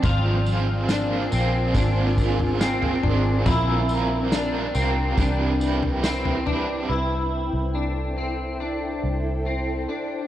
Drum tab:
TB |x-x-x-x-x-x-x---|x-x-x-x-x-x-x---|----------------|
SD |----o-------o---|----o-------o---|----------------|
FT |o-------o--o-oo-|o-------o--o-oo-|----------------|
BD |o-------o-o-----|o-------o-------|----------------|